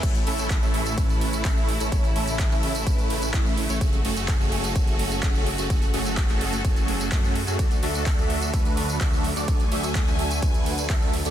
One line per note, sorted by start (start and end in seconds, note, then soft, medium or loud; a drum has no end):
0.03 0.24 A1 loud
0.03 7.55 C#3 medium
0.03 3.77 E3 medium
0.03 0.18 A3 medium
0.03 11.30 A3 medium
0.03 0.18 C#4 medium
0.03 3.77 E4 medium
0.03 0.18 E4 medium
0.03 0.18 A4 medium
0.03 0.18 C#5 loud
0.03 kick loud
0.03 closed hi-hat medium
0.03 crash medium
0.03 ride medium
0.03 tambourine medium
0.15 closed hi-hat soft
0.15 tambourine soft
0.27 0.60 A1 loud
0.27 0.59 A3 medium
0.27 0.59 C#4 medium
0.27 0.59 E4 medium
0.27 0.59 A4 medium
0.27 0.59 E5 loud
0.27 open hi-hat loud
0.39 closed hi-hat medium
0.39 tambourine medium
0.50 kick loud
0.50 clap loud
0.50 closed hi-hat medium
0.50 ride medium
0.50 tambourine medium
0.62 0.95 A1 loud
0.62 0.95 A3 medium
0.62 0.95 C#4 medium
0.62 0.95 E4 medium
0.62 0.95 A4 medium
0.62 0.95 E5 loud
0.62 tambourine soft
0.74 open hi-hat medium
0.86 closed hi-hat medium
0.86 tambourine medium
0.98 1.43 A1 loud
0.98 1.42 A3 medium
0.98 1.42 C#4 medium
0.98 1.42 E4 medium
0.98 1.42 A4 medium
0.98 1.42 B4 medium
0.98 kick loud
0.98 closed hi-hat medium
0.98 ride medium
0.98 tambourine medium
1.09 closed hi-hat soft
1.09 tambourine soft
1.21 open hi-hat loud
1.33 closed hi-hat medium
1.33 tambourine medium
1.45 1.78 A1 loud
1.45 1.69 A3 loud
1.45 1.69 E4 medium
1.45 1.69 E5 loud
1.45 kick loud
1.45 clap loud
1.45 closed hi-hat medium
1.45 ride medium
1.45 tambourine medium
1.57 tambourine soft
1.69 open hi-hat medium
1.80 1.90 A1 loud
1.80 1.89 A3 medium
1.80 1.89 C#4 medium
1.80 1.89 E4 medium
1.80 1.89 A4 medium
1.80 1.89 C#5 medium
1.80 closed hi-hat medium
1.80 tambourine medium
1.92 2.13 A1 loud
1.92 2.07 A3 medium
1.92 2.07 C#4 medium
1.92 2.07 E4 medium
1.92 2.07 A4 medium
1.92 2.07 C#5 loud
1.92 kick loud
1.92 closed hi-hat medium
1.92 ride medium
1.92 tambourine medium
2.04 closed hi-hat soft
2.04 tambourine soft
2.16 2.49 A1 loud
2.16 2.48 A3 medium
2.16 2.48 C#4 medium
2.16 2.48 E4 medium
2.16 2.48 A4 medium
2.16 2.48 E5 loud
2.16 open hi-hat loud
2.28 closed hi-hat medium
2.28 tambourine medium
2.39 kick loud
2.39 clap loud
2.39 closed hi-hat medium
2.39 ride medium
2.39 tambourine medium
2.51 2.84 A1 loud
2.51 2.84 A3 medium
2.51 2.84 C#4 medium
2.51 2.84 E4 medium
2.51 2.84 A4 medium
2.51 2.84 E5 loud
2.51 clap soft
2.51 tambourine soft
2.63 open hi-hat loud
2.75 closed hi-hat medium
2.75 tambourine medium
2.87 3.32 A1 loud
2.87 3.31 A3 medium
2.87 3.31 C#4 medium
2.87 3.31 E4 medium
2.87 kick loud
2.87 closed hi-hat medium
2.87 ride medium
2.87 tambourine medium
2.98 closed hi-hat soft
2.98 tambourine soft
3.10 open hi-hat loud
3.22 closed hi-hat medium
3.22 tambourine medium
3.34 3.67 A1 loud
3.34 3.58 A3 loud
3.34 3.58 C#4 loud
3.34 3.58 E4 medium
3.34 3.58 A4 loud
3.34 3.58 E5 loud
3.34 kick loud
3.34 clap loud
3.34 closed hi-hat medium
3.34 ride medium
3.46 tambourine soft
3.57 open hi-hat loud
3.69 3.79 A1 loud
3.69 3.78 A3 medium
3.69 3.78 C#4 medium
3.69 3.78 E4 medium
3.69 3.78 A4 medium
3.69 3.78 C#5 medium
3.69 closed hi-hat medium
3.69 tambourine medium
3.81 4.02 F#1 medium
3.81 3.96 A3 medium
3.81 3.96 C#4 medium
3.81 9.44 F#4 medium
3.81 3.96 G#4 medium
3.81 3.96 A4 medium
3.81 kick loud
3.81 closed hi-hat medium
3.81 ride medium
3.81 tambourine medium
3.93 closed hi-hat soft
3.93 tambourine soft
4.05 4.38 F#1 loud
4.05 4.37 A3 medium
4.05 4.37 C#4 medium
4.05 4.37 F#4 medium
4.05 4.37 G#4 medium
4.05 4.37 A4 loud
4.05 open hi-hat loud
4.17 closed hi-hat medium
4.17 tambourine medium
4.28 kick loud
4.28 clap loud
4.28 closed hi-hat medium
4.28 ride medium
4.28 tambourine medium
4.40 4.73 F#1 loud
4.40 4.73 A3 medium
4.40 4.73 C#4 medium
4.40 4.73 F#4 medium
4.40 4.73 G#4 medium
4.40 4.73 A4 loud
4.40 tambourine soft
4.52 open hi-hat medium
4.64 closed hi-hat medium
4.64 tambourine medium
4.76 5.20 F#1 loud
4.76 5.20 A3 medium
4.76 5.20 C#4 medium
4.76 5.20 F#4 medium
4.76 5.20 G#4 medium
4.76 5.20 A4 medium
4.76 kick loud
4.76 closed hi-hat medium
4.76 ride medium
4.76 tambourine medium
4.87 closed hi-hat soft
4.87 tambourine soft
4.99 open hi-hat loud
5.12 tambourine medium
5.23 5.56 F#1 loud
5.23 5.47 A3 loud
5.23 5.47 G#4 medium
5.23 5.47 A4 loud
5.23 kick loud
5.23 clap loud
5.23 closed hi-hat medium
5.23 ride medium
5.23 tambourine medium
5.35 tambourine soft
5.46 open hi-hat loud
5.58 5.68 F#1 loud
5.58 5.67 A3 medium
5.58 5.67 C#4 medium
5.58 5.67 F#4 medium
5.58 5.67 G#4 medium
5.58 5.67 A4 medium
5.58 closed hi-hat medium
5.58 tambourine medium
5.70 5.91 F#1 loud
5.70 5.85 A3 medium
5.70 5.85 C#4 medium
5.70 5.85 F#4 medium
5.70 5.85 G#4 medium
5.70 5.85 A4 medium
5.70 kick loud
5.70 closed hi-hat medium
5.70 ride medium
5.70 tambourine medium
5.82 closed hi-hat soft
5.82 tambourine soft
5.94 6.27 F#1 loud
5.94 6.26 A3 medium
5.94 6.26 C#4 medium
5.94 6.26 F#4 medium
5.94 6.26 G#4 medium
5.94 6.26 A4 loud
5.94 open hi-hat loud
6.06 closed hi-hat medium
6.06 tambourine medium
6.17 kick loud
6.17 clap loud
6.17 closed hi-hat medium
6.17 ride medium
6.17 tambourine medium
6.29 6.62 F#1 loud
6.29 6.62 A3 medium
6.29 6.62 C#4 medium
6.29 6.62 F#4 medium
6.29 6.62 G#4 medium
6.29 6.62 A4 loud
6.29 clap soft
6.29 closed hi-hat soft
6.29 tambourine soft
6.41 open hi-hat loud
6.53 closed hi-hat medium
6.53 tambourine medium
6.65 7.09 F#1 loud
6.65 7.09 C#4 medium
6.65 kick loud
6.65 closed hi-hat medium
6.65 ride medium
6.65 tambourine medium
6.76 closed hi-hat soft
6.76 tambourine soft
6.88 open hi-hat loud
7.00 closed hi-hat medium
7.00 tambourine medium
7.12 7.45 F#2 loud
7.12 7.36 A3 loud
7.12 7.36 C#4 medium
7.12 7.36 F#4 medium
7.12 kick loud
7.12 clap loud
7.12 closed hi-hat medium
7.12 ride medium
7.12 tambourine medium
7.24 tambourine soft
7.35 open hi-hat loud
7.47 7.57 F#2 medium
7.47 7.56 A3 medium
7.47 7.56 C#4 medium
7.47 7.56 F#4 medium
7.47 7.56 G#4 medium
7.47 7.56 A4 medium
7.47 closed hi-hat soft
7.47 tambourine medium
7.59 7.80 D2 loud
7.59 11.30 D3 medium
7.59 11.30 F#3 medium
7.59 7.74 A3 medium
7.59 7.74 D4 medium
7.59 7.74 F#4 medium
7.59 7.74 A4 medium
7.59 7.74 D5 medium
7.59 kick loud
7.59 closed hi-hat medium
7.59 ride medium
7.59 tambourine medium
7.71 closed hi-hat soft
7.71 tambourine soft
7.83 8.16 D2 loud
7.83 8.15 A3 medium
7.83 8.15 D4 medium
7.83 8.15 F#4 medium
7.83 8.15 A4 medium
7.83 8.15 E5 loud
7.83 open hi-hat loud
7.95 closed hi-hat medium
7.95 tambourine medium
8.06 kick loud
8.06 clap loud
8.06 closed hi-hat medium
8.06 ride medium
8.06 tambourine medium
8.18 8.51 D2 loud
8.18 8.51 A3 medium
8.18 8.51 D4 medium
8.18 8.51 F#4 medium
8.18 8.51 A4 medium
8.18 8.51 E5 loud
8.18 tambourine soft
8.30 open hi-hat loud
8.42 closed hi-hat medium
8.42 tambourine medium
8.54 8.98 D2 loud
8.54 8.98 A3 medium
8.54 8.98 D4 medium
8.54 8.98 F#4 medium
8.54 8.98 A4 medium
8.54 8.98 B4 medium
8.54 kick loud
8.54 closed hi-hat medium
8.54 ride medium
8.54 tambourine medium
8.65 closed hi-hat soft
8.65 tambourine soft
8.77 open hi-hat loud
8.89 closed hi-hat medium
8.89 tambourine medium
9.01 9.34 D2 loud
9.01 9.25 D4 medium
9.01 9.25 F#4 medium
9.01 kick loud
9.01 clap loud
9.01 closed hi-hat medium
9.01 ride medium
9.01 tambourine medium
9.13 tambourine soft
9.24 open hi-hat medium
9.36 9.46 D2 loud
9.36 9.45 A3 medium
9.36 9.45 D4 medium
9.36 9.45 F#4 medium
9.36 9.45 A4 medium
9.36 9.45 D5 medium
9.36 closed hi-hat medium
9.36 tambourine medium
9.48 9.69 D2 loud
9.48 9.63 D4 medium
9.48 11.30 G#5 medium
9.48 kick loud
9.48 closed hi-hat medium
9.48 ride medium
9.48 tambourine medium
9.60 closed hi-hat soft
9.60 tambourine soft
9.72 10.05 D2 medium
9.72 10.04 A3 medium
9.72 10.04 D4 medium
9.72 10.04 F#4 medium
9.72 10.04 A4 medium
9.72 10.04 E5 loud
9.72 open hi-hat loud
9.83 closed hi-hat medium
9.83 tambourine medium
9.95 kick loud
9.95 clap loud
9.95 closed hi-hat medium
9.95 ride medium
9.95 tambourine medium
10.07 10.40 D2 loud
10.07 10.40 A3 loud
10.07 10.40 D4 medium
10.07 10.40 F#4 medium
10.07 10.40 A4 medium
10.07 10.40 E5 loud
10.07 clap soft
10.07 tambourine soft
10.19 open hi-hat medium
10.31 closed hi-hat medium
10.31 tambourine medium
10.43 10.87 D2 loud
10.43 10.87 A3 medium
10.43 10.87 D4 medium
10.43 10.87 F#4 medium
10.43 10.87 A4 medium
10.43 10.87 B4 medium
10.43 kick loud
10.43 closed hi-hat medium
10.43 ride medium
10.43 tambourine medium
10.54 closed hi-hat soft
10.54 tambourine soft
10.66 open hi-hat loud
10.78 closed hi-hat medium
10.78 tambourine medium
10.90 11.23 D2 loud
10.90 11.14 A3 loud
10.90 11.14 E5 loud
10.90 kick loud
10.90 clap loud
10.90 closed hi-hat medium
10.90 ride medium
10.90 tambourine medium
11.02 tambourine soft
11.13 open hi-hat medium
11.25 11.30 D2 loud
11.25 11.30 A3 medium
11.25 11.30 D4 medium
11.25 11.30 F#4 medium
11.25 11.30 A4 medium
11.25 11.30 D5 medium
11.25 closed hi-hat medium
11.25 tambourine medium